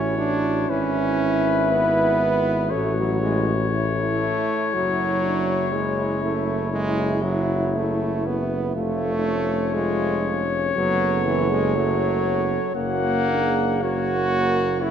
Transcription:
Already playing: tuba A1, trombone C#4, french horn section E4, euphonium F#4, cornet C#5
0.18 trombone D4
0.69 tuba G#1, trombone C#4, euphonium E4, cornet B4
1.72 trombone B3
2.71 tuba A1, trombone A3, french horn section E4, euphonium F#4, cornet C#5
2.97 trombone F#3
3.22 trombone G#3
3.73 trombone A3, euphonium E4
4.74 tuba F#1, trombone F#3, euphonium F#4
5.24 euphonium D4
5.72 trombone G#3, euphonium C#4
6.24 trombone A3
6.73 trombone G#3, euphonium E4
7.24 trombone F#3
7.75 trombone A3
8.26 trombone B3
8.74 tuba F1, trombone A3, euphonium F4, french horn section F4, cornet C#5
9.24 euphonium C#4
9.74 trombone G#3, euphonium F4
10.26 euphonium C#4
10.76 tuba F#1, trombone F#3, euphonium B3, french horn section A4
11.25 trombone E3
11.50 trombone G#3
11.75 trombone F#3, euphonium A3
12.26 euphonium B3
12.75 tuba F#1, trombone A#3, euphonium C#4, french horn section F#4, cornet F#5
13.28 euphonium D4, french horn section G#4
13.82 euphonium A#3, trombone F#4, french horn section A#4, cornet C#5
14.31 french horn section A#4
14.81 euphonium C#4, trombone E4, french horn section G#4, cornet C#5

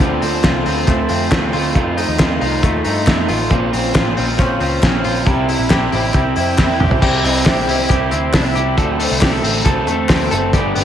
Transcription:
Already playing: clean electric guitar C4
0.00 picked electric bass D2, clean electric guitar D3 F3 A3 C4 F4, kick
0.22 picked electric bass D2, clean electric guitar A3 C4 F4, open hi-hat
0.44 picked electric bass C2, clean electric guitar D3 F3 A3 C4 F4, kick, snare, clap, closed hi-hat
0.66 picked electric bass D2, clean electric guitar A3 C4 F4, open hi-hat
0.87 picked electric bass D2, clean electric guitar F3 A3 C4 F4, kick, clap, closed hi-hat
1.09 picked electric bass F2, clean electric guitar A3 C4 F4, open hi-hat
1.31 picked electric bass D2, clean electric guitar D3 F3 A3 C4 F4, kick, snare, clap, closed hi-hat
1.52 picked electric bass D2, clean electric guitar A3 C4 F4, open hi-hat
1.74 clean electric guitar F2 C3 D#3 A3 D#4 F4, picked electric bass F2, kick, closed hi-hat
1.97 clean electric guitar D#3 A3 D#4 F4, open hi-hat
2.08 picked electric bass D#2
2.18 clean electric guitar F2 C3 D#3 A3 D#4 F4, kick, snare, clap, closed hi-hat
2.40 picked electric bass C2, clean electric guitar D#3 A3 D#4 F4, open hi-hat
2.62 picked electric bass D#2, clean electric guitar D#3 A3 D#4 F4, kick, clap, closed hi-hat
2.84 picked electric bass G2, clean electric guitar D#3 A3 D#4 F4, open hi-hat
3.06 clean electric guitar F2 C3 D#3 A3 D#4 F4, picked electric bass F2, kick, snare, clap, closed hi-hat
3.28 picked electric bass A1, clean electric guitar D#3 A3 D#4 F4, open hi-hat
3.50 picked electric bass A#1, clean electric guitar A#2 F3 C4 C#4 F4, kick, closed hi-hat
3.71 picked electric bass A#1, clean electric guitar C4 C#4 F4, open hi-hat
3.93 picked electric bass A1, clean electric guitar A#2 F3 C4 C#4 F4, kick, snare, clap, closed hi-hat
4.14 picked electric bass A#1, clean electric guitar C4 C#4 F4, open hi-hat
4.37 picked electric bass A#1, clean electric guitar F3 C4 C#4 F4, kick, clap, closed hi-hat
4.59 picked electric bass C#2, clean electric guitar C4 C#4 F4, open hi-hat
4.82 picked electric bass A#1, clean electric guitar A#2 F3 C4 C#4 F4, kick, snare, clap, closed hi-hat
5.03 picked electric bass A#1, clean electric guitar C4 C#4 F4, open hi-hat
5.25 picked electric bass C2, clean electric guitar C3 G3 C4 E4 G4, kick, closed hi-hat
5.47 clean electric guitar C4 E4 G4, open hi-hat
5.59 picked electric bass A#1
5.69 clean electric guitar C3 G3 C4 E4 G4, kick, snare, clap, closed hi-hat
5.91 picked electric bass A1, clean electric guitar C4 E4 G4, open hi-hat
6.13 picked electric bass C2, clean electric guitar G3 C4 E4 G4, kick, clap, closed hi-hat
6.36 picked electric bass F2, clean electric guitar C4 E4 G4, open hi-hat
6.57 picked electric bass E2, clean electric guitar C3 G3 C4 E4 G4, kick, snare, clap
6.79 picked electric bass A#1, clean electric guitar C4 E4 G4, mid tom
6.91 floor tom
7.00 picked electric bass C2, clean electric guitar C3 G3 C4 E4 G4, kick, crash
7.23 picked electric bass C2, clean electric guitar C4 E4 G4, hi-hat pedal, open hi-hat
7.44 picked electric bass A#1, clean electric guitar G3 C4 E4 G4, kick, snare, clap, hi-hat pedal, open hi-hat
7.67 picked electric bass C2, clean electric guitar C4 E4 G4, hi-hat pedal, open hi-hat
7.89 picked electric bass C2, clean electric guitar C3 G3 C4 E4 G4, kick, clap, hi-hat pedal, open hi-hat
8.11 picked electric bass D2, clean electric guitar C4 E4 G4, hi-hat pedal, open hi-hat
8.33 picked electric bass C2, clean electric guitar G3 C4 D4 E4 G4, kick, snare, clap, hi-hat pedal, open hi-hat
8.44 clean electric guitar E4
8.55 picked electric bass C2, clean electric guitar C4 E4 G4, hi-hat pedal, open hi-hat
8.77 picked electric bass D2, clean electric guitar D3 F#3 A3 C4 A4, kick, hi-hat pedal, open hi-hat
8.99 clean electric guitar A3 C4 A4, hi-hat pedal, open hi-hat
9.11 picked electric bass C2
9.21 clean electric guitar F#3 A3 C4 G4 A4, kick, snare, clap, hi-hat pedal
9.33 clean electric guitar A4
9.43 picked electric bass A1, clean electric guitar A3 C4 A4, hi-hat pedal, open hi-hat
9.65 picked electric bass C2, clean electric guitar D3 F#3 A3 C4 A4, kick, clap, hi-hat pedal, open hi-hat
9.87 picked electric bass E2, clean electric guitar A3 C4 A4, hi-hat pedal, open hi-hat
10.08 picked electric bass D2, clean electric guitar F#3 A3 C4 A4, kick, snare, clap, hi-hat pedal, open hi-hat
10.31 picked electric bass F#1, clean electric guitar A3 C4 A4, hi-hat pedal, open hi-hat
10.53 picked electric bass G1, clean electric guitar G2 D3 G3 B3 D4 G4, kick, hi-hat pedal, open hi-hat
10.75 picked electric bass G1, clean electric guitar G3 B3 D4 G4, hi-hat pedal, open hi-hat

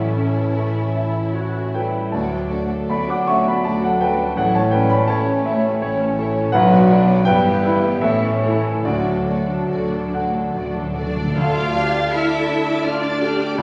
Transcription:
Already playing: double bass section A1, grand piano A1 A4 E5, timpani A2, cello section E3, french horn section E3 C#4, viola section C#4, violin section E4 A4
0.15 grand piano C#4
0.55 viola section C#4, grand piano A4
0.95 viola section E4, grand piano E5
1.34 viola section F#4, grand piano C#5
1.74 cello section G3, viola section E4, grand piano A4 B4 G5
2.12 double bass section D2, grand piano D2 D5 A5, french horn section F#3 D4, cello section A3, viola section A3, violin section F#4 D5
2.31 viola section D4, violin section A4
2.50 viola section A3, grand piano D4, violin section F#4 D5
2.69 viola section D4, violin section A4
2.88 double bass section D2, viola section A3, cello section B3, violin section F#4 D5, grand piano A4 D5 B5
3.08 cello section D4, viola section D4, violin section A4, grand piano F#5 D6
3.27 viola section A3, cello section C#4, violin section F#4 D5, grand piano E5 F#5 C#6
3.46 cello section B3, viola section D4, violin section A4, grand piano D5 B5
3.64 double bass section D2, viola section A3, cello section A3, violin section F#4 D5, grand piano D5 A5
3.82 cello section F#3, viola section D4, violin section A4, grand piano F#5
3.86 grand piano A4
4.00 cello section G3, viola section A3, violin section F#4 D5, grand piano A4 B4 G5
4.18 viola section D4, violin section A4
4.36 grand piano A1 A4 F#5, double bass section A1, french horn section E3 C#4, cello section F#3, viola section A3, violin section E4 C#5
4.55 cello section A3, viola section C#4, violin section C#4 A4, grand piano C#5 A5
4.71 cello section G3, viola section A3, grand piano C#4 B4 G5, violin section E4
4.75 violin section C#5
4.90 cello section B3, viola section C#4, violin section C#4 A4, grand piano D5 B5
5.08 double bass section A1, cello section A3, viola section A3, violin section E4 C#5, grand piano A4 C#5 A5
5.28 violin section C#4 A4, viola section C#4
5.45 viola section A3, violin section E4 C#5, grand piano E5
5.63 viola section C#4, violin section C#4 A4
5.81 double bass section A1, viola section A3, violin section E4 C#5, grand piano C#5
5.99 viola section C#4, violin section C#4 A4
6.17 viola section A3, violin section E4 C#5, grand piano A4
6.36 violin section C#4 A4, viola section C#4
6.52 double bass section B1, grand piano B1 B4 F#5, cello section F#3, viola section F#3, french horn section F#3 D4, violin section D4 B4
6.72 viola section B3, violin section F#4 D5
6.90 viola section F#3, violin section D4 B4, grand piano D4 D5
7.08 viola section B3, violin section F#4 D5
7.25 double bass section G1, grand piano G2 B4 G5, french horn section E3 B3, cello section G3, viola section G3, violin section E4 G4
7.44 viola section B3, violin section G4 B4
7.63 viola section G3, violin section E4 G4, grand piano E4 B4
7.83 viola section B3, violin section G4 B4
8.01 double bass section A1, grand piano A2 A4 E5, cello section E3, viola section A3, french horn section C#4, violin section E4 C#5
8.22 violin section C#4 A4, viola section C#4
8.43 viola section A3, violin section E4 C#5, grand piano E4 A4
8.63 violin section C#4 A4, viola section C#4
8.84 double bass section D2, grand piano D2 F#4 D5, cello section D3, french horn section F#3 D4, viola section A3, violin section F#4 D5
9.04 viola section D4, violin section A4
9.27 timpani D3, viola section A3, grand piano D4, violin section F#4 D5
9.37 timpani D3
9.45 timpani D3, viola section D4, violin section A4
9.49 violin section A4
9.54 timpani D3
9.63 timpani D3
9.69 double bass section D2, timpani D3, viola section A3, violin section F#4 D5, grand piano A4
9.88 timpani D3, viola section D4
9.92 violin section A4
10.06 timpani D3
10.12 timpani D3, viola section A3, violin section F#4 D5, grand piano F#5
10.22 timpani D3
10.31 timpani D3, viola section D4, violin section A4
10.39 timpani D3
10.47 timpani D3
10.52 double bass section D2, timpani D3, viola section A3, violin section F#4 D5
10.57 grand piano D5
10.64 timpani D3
10.72 timpani D3, viola section D4, violin section A4
10.80 timpani D3
10.89 timpani D3
10.94 timpani D3, viola section A3, cello section D4, violin section F#4 D5
10.99 grand piano A4
11.05 timpani D3
11.14 timpani D3, viola section D4, violin section A4
11.18 violin section A4
11.22 timpani D3
11.29 timpani D3
11.35 double bass section D2, grand piano D2, timpani D3, french horn section A3 D4, cello section F4, viola section A4, clarinet D5, violin section F5 A5, flute A5
11.54 violin section D6
11.73 grand piano D4, viola section G4, violin section F6
11.92 violin section A6
12.10 cello section E4, viola section A4, grand piano A4, violin section E5 F6
12.28 violin section D6
12.49 grand piano D4, violin section A5
12.65 violin section D6
12.84 cello section D4, viola section F4, violin section D5 F6, grand piano D5
13.03 violin section A6
13.21 viola section G4, grand piano A4, violin section F6
13.41 violin section D6
13.57 double bass section C#2, grand piano C#2, cello section A3, french horn section E4, viola section A4, clarinet E5, flute G5, violin section G5

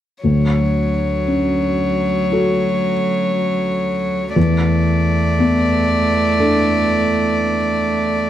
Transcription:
0.24 felt piano D2, cello F#3, violin C#5
1.28 felt piano C#4
2.32 felt piano F#4 A4
4.35 felt piano E2, cello A3, violin D5
5.39 felt piano B3
6.40 felt piano D4 A4

